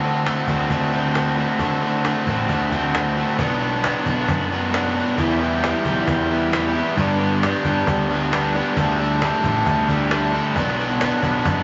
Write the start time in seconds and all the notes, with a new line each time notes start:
Already playing: D3 D4
0.02 D3 A3 C4 F#4
0.24 D3 A3 C4 F#4, cajon slap
0.47 D2 D3 A3 C4 F#4, cajon bass
0.70 D2 D3 A3 C4 F#4, cajon bass
0.92 D3 A3 C4 F#4
1.15 D3 A3 C4 F#4, cajon slap
1.38 A3 C4 F#4
1.59 D3 A3 C4 F#4, cajon bass
1.82 D3 A3 C4 F#4
2.04 D3 A3 C4 F#4, cajon slap
2.27 A1 A3 C4 F#4, cajon bass
2.31 D3
2.49 D2 D3 A3 C4, cajon bass
2.53 F#4
2.72 D3 A3 C4 F#4, cajon bass
2.94 D3 A3 C4 F#4, cajon slap
3.06 cajon slap
3.17 A3 C4 F#4
3.39 B1 B2 F#3 B3 D4 F#4, cajon bass
3.60 F#3 B3 D4 F#4
3.83 B2 F#3 B3 D4 F#4, cajon slap
4.05 B1 B3 D4 F#4, cajon bass
4.28 F#2, cajon bass
4.51 F#3 B3 D4
4.73 B2 F#3 B3 D4 F#4, cajon slap
4.95 B3 D4 F#4
4.99 F#3
5.16 E2 B2 E3 G3 B3 G4, cajon bass
5.21 E4
5.39 E3 B3 E4 G4
5.43 G3
5.62 E3 G3 B3 E4 G4, cajon slap
5.84 B1 E3 G3 E4 G4, cajon bass
6.07 E2, cajon bass
6.30 G3 B3 E4
6.51 E2 B2 E3 G3 B3 G4, cajon slap
6.55 E4
6.73 E3 B3 E4 G4
6.78 G3
6.97 G2 D3 G3 B3 D4 G4, cajon bass
7.18 B3 D4 G4
7.23 G3
7.42 G2 D3 G3 B3 D4 G4, cajon slap
7.63 G2 G3 B3 D4 G4, cajon bass
7.87 D2, cajon bass
8.10 G3 B3 D4
8.31 G2 D3 G3 B3 G4, cajon slap
8.35 D4
8.53 B3 D4 G4
8.57 G3
8.76 D2 D3 G3 A3 D4 A4, cajon bass
8.99 G3 A3 D4 A4
9.22 D3 G3 A3 D4 A4, cajon slap
9.43 A1 G3 D4 A4, cajon bass
9.66 D2, cajon bass
9.89 G3 A3 D4, cajon bass
10.11 D3 G3 A3 D4 A4, cajon slap
10.32 A3 D4 A4
10.37 G3
10.56 B1 B2 F#3 B3 D4 F#4, cajon bass
10.77 B3 D4 F#4
10.81 F#3
10.90 tambourine
11.00 B2 F#3 B3 D4 F#4, cajon slap, tambourine
11.21 B1 B3 D4 F#4, cajon bass
11.36 tambourine
11.45 F#2, cajon bass, tambourine
11.57 tambourine